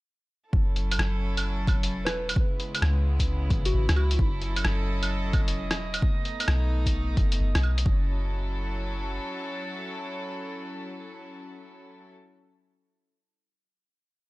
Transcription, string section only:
0.52 2.34 F#3 medium
0.52 2.34 C#4 medium
0.52 2.34 E4 medium
0.52 2.34 A4 medium
2.36 4.18 C#3 medium
2.36 4.18 G#3 medium
2.36 4.18 B3 medium
2.36 5.99 E4 medium
4.21 6.02 F#3 medium
4.21 6.02 C#4 medium
4.21 6.02 A4 medium
6.04 7.85 A3 medium
6.04 7.85 B3 medium
6.04 7.85 D#4 medium
7.86 12.09 F#3 medium
7.86 12.09 C#4 medium
7.86 12.10 E4 medium
7.86 12.10 A4 medium

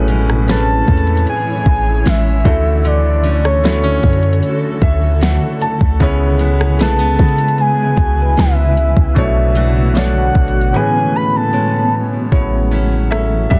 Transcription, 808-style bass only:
0.00 0.83 A1 loud
0.88 1.26 E2 loud
1.66 2.04 A1 loud
2.06 2.44 A1 loud
2.45 3.99 D2 loud
4.04 4.41 F#2 loud
4.82 5.39 D2 loud
5.81 6.00 D2 loud
6.01 6.81 C#2 loud
6.79 7.01 B1 loud
6.99 7.18 C#2 loud
7.20 7.95 C#3 loud
7.98 8.36 C#2 loud
8.37 8.94 C#2 loud
8.97 9.16 C#2 loud
9.17 10.31 B1 loud
10.35 10.73 A1 loud
12.32 13.47 A1 loud
13.51 13.60 E2 medium

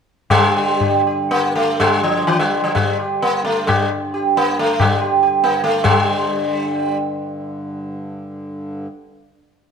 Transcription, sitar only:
0.31 1.02 G3 medium
0.56 0.79 G4 soft
0.81 1.04 G4 soft
1.07 1.29 G4 soft
1.31 1.55 A#3 medium
1.55 1.81 A3 medium
1.80 2.03 G3 medium
2.03 2.27 F3 medium
2.27 2.39 E3 medium
2.39 2.63 G3 medium
2.64 2.74 F3 medium
2.75 2.97 G3 medium
2.99 3.21 G4 soft
3.22 3.44 A#3 medium
3.45 3.69 A3 medium
3.67 3.89 G3 medium
4.14 4.35 G4 soft
4.37 4.59 A#3 medium
4.59 4.81 A3 medium
4.81 5.00 G3 medium
5.01 5.21 G4 soft
5.23 5.42 G4 soft
5.44 5.63 A#3 medium
5.64 5.83 A3 medium
5.84 6.98 G3 medium

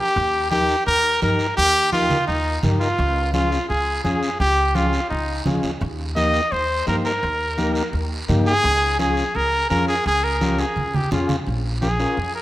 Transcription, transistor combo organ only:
0.51 0.76 D#4 medium
0.51 0.76 G4 medium
0.51 0.77 A#4 medium
1.22 1.47 D#4 medium
1.22 1.47 G4 medium
1.22 1.47 A#4 medium
1.93 2.18 D#4 medium
1.93 2.18 G4 medium
1.93 2.18 A#4 medium
2.63 2.88 D#4 medium
2.63 2.88 G4 medium
2.63 2.89 A#4 medium
3.34 3.59 C#4 medium
3.34 3.59 F4 medium
3.34 3.59 G#4 medium
4.04 4.30 C#4 medium
4.04 4.30 F4 medium
4.04 4.30 G#4 medium
4.75 5.00 C#4 medium
4.75 5.00 F4 medium
4.75 5.01 G#4 medium
5.46 5.71 C#4 medium
5.46 5.71 F4 medium
5.46 5.71 G#4 medium
6.16 6.41 A#3 medium
6.16 6.42 D#4 medium
6.16 6.42 G4 medium
6.87 7.12 A#3 medium
6.87 7.12 D#4 medium
6.87 7.12 G4 medium
7.58 7.83 A#3 medium
7.58 7.83 D#4 medium
7.58 7.83 G4 loud
8.29 8.54 A#3 medium
8.29 8.54 D#4 medium
8.29 8.54 G4 loud
8.99 9.24 C#4 medium
8.99 9.24 F4 medium
8.99 9.24 G#4 medium
9.70 9.95 C#4 medium
9.70 9.95 F4 medium
9.70 9.95 G#4 medium
10.41 10.66 C#4 medium
10.41 10.66 F4 medium
10.41 10.66 G4 medium
11.12 11.36 C#4 medium
11.12 11.36 F4 medium
11.12 11.37 G#4 medium
11.82 11.88 C#4 medium
11.82 11.88 F4 medium
11.82 11.89 A#4 medium
11.99 12.18 C#4 medium
11.99 12.18 F4 medium
11.99 12.19 A#4 medium

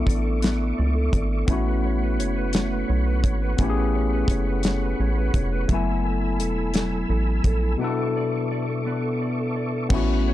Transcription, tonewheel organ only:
0.00 5.64 A3 medium
0.00 1.45 E5 medium
0.00 1.45 C#6 medium
0.00 1.46 D6 medium
1.47 5.64 F#5 medium
1.47 7.75 B5 medium
1.47 5.64 C#6 medium
5.68 7.77 A4 medium
5.68 7.77 G#5 medium
5.68 7.77 E6 medium
7.79 9.88 B3 medium
7.79 9.88 A4 medium
7.79 9.88 E5 medium
7.79 9.88 C#6 medium
7.79 9.88 D6 medium
9.90 10.34 A3 medium
9.90 10.34 F#5 medium
9.90 10.34 B5 medium

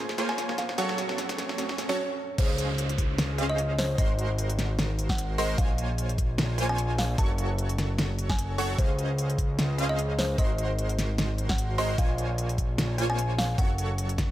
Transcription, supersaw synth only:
0.00 0.16 A#3 medium
0.00 0.16 F4 medium
0.00 0.16 C5 medium
0.00 0.16 C#5 medium
0.00 0.16 G#5 medium
0.18 0.76 A#3 medium
0.18 0.76 F4 medium
0.18 0.76 C5 medium
0.18 0.76 C#5 medium
0.18 0.76 G#5 loud
0.78 1.87 F#3 medium
0.78 1.87 F#4 medium
0.78 1.87 A4 medium
0.78 1.87 C#5 medium
0.78 1.87 C#6 loud
1.89 1.96 F#3 medium
1.89 1.96 F#4 medium
1.89 1.96 A4 medium
1.89 1.96 C#5 medium
1.89 1.96 C#6 loud
2.38 3.36 C#4 medium
2.38 3.36 G#4 medium
2.38 3.36 C5 medium
2.38 3.36 D#5 medium
2.38 3.36 F5 medium
3.38 3.96 C#4 medium
3.38 3.96 G#4 medium
3.38 3.96 C5 medium
3.38 3.96 D#5 medium
3.38 3.96 F5 loud
3.98 5.36 G#3 medium
3.98 5.36 F#4 medium
3.98 5.36 A#4 medium
3.98 5.36 C5 medium
3.98 5.36 C6 loud
5.38 5.56 G#3 medium
5.38 5.56 F#4 medium
5.38 5.56 A#4 medium
5.38 5.56 C5 medium
5.38 5.56 C6 medium
5.58 6.56 A#3 medium
5.58 6.56 F4 medium
5.58 6.56 G#5 medium
6.58 7.16 A#3 medium
6.58 7.16 F4 medium
6.58 7.16 C5 medium
6.58 7.16 C#5 medium
6.58 7.16 G#5 loud
7.18 8.56 F#3 loud
7.18 8.56 F#4 medium
7.18 8.56 A4 medium
7.18 8.56 C#5 medium
7.18 8.56 C#6 loud
8.58 8.76 F#3 medium
8.58 8.76 F#4 medium
8.58 8.76 A4 medium
8.58 8.76 C#5 medium
8.58 8.76 C#6 medium
8.78 9.76 C#4 medium
8.78 9.76 G#4 medium
8.78 9.76 C5 medium
8.78 9.76 D#5 medium
8.78 9.76 F5 medium
9.78 10.36 C#4 medium
9.78 10.36 G#4 medium
9.78 10.36 C5 medium
9.78 10.36 D#5 medium
9.78 10.36 F5 loud
10.38 11.76 G#3 medium
10.38 11.76 F#4 medium
10.38 11.76 A#4 medium
10.38 11.76 C5 medium
10.38 11.76 C6 loud
11.78 11.96 G#3 medium
11.78 11.96 F#4 medium
11.78 11.96 A#4 medium
11.78 11.96 C5 medium
11.78 11.96 C6 medium
11.98 12.96 A#3 medium
11.98 12.96 F4 medium
11.98 12.96 C5 medium
11.98 12.96 C#5 medium
11.98 12.96 G#5 medium
12.98 13.56 A#3 medium
12.98 13.56 F4 medium
12.98 13.56 C5 medium
12.98 13.56 C#5 medium
12.98 13.56 G#5 loud
13.58 14.31 F#3 loud
13.58 14.31 F#4 medium
13.58 14.31 A4 medium
13.58 14.31 C#5 medium
13.58 14.31 C#6 loud

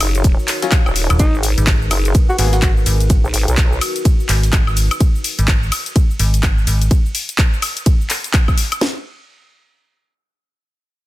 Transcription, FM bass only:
1.10 1.18 D#1 loud
1.58 1.89 G#1 loud
2.38 2.85 G#1 loud
2.86 3.22 G#1 loud
4.29 4.51 G#1 loud
5.39 5.70 G#1 loud
6.19 6.66 G#1 loud
6.67 6.89 G#1 loud

